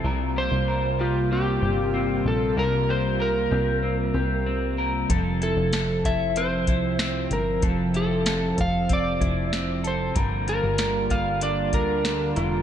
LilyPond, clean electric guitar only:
\new Staff \with { instrumentName = "Clean electric guitar" } { \time 4/4 \key f \major \tempo 4 = 95 <c bes'>8 g'8 bes'8 g'8 c'8 g'8 c'4 | <c bes'>8 g'8 bes'8 g'8 c'8 g'8 c'8 bes'8 | <f a'>8 e'8 a'8 e'8 c'8 e'8 c'4 | <f a'>8 e'8 a'4 c'8 e'8 c'8 a'8 |
<g bes'>8 f'8 bes'8 f'8 d'8 f'8 d'8 bes'8 | }